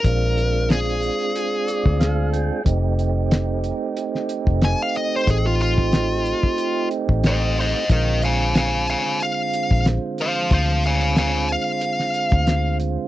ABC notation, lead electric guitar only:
X:1
M:4/4
L:1/16
Q:"Swing 16ths" 1/4=92
K:Bb
V:1 name="Lead electric guitar"
B4 _A12 | z12 _a f e c | _A F F8 z2 [ce]2 [ce]2 | [Be]2 [f_a]2 [fa]2 [fa]2 f4 z2 [cf]2 |
[cf]2 [f_a]2 [fa]2 f8 z2 |]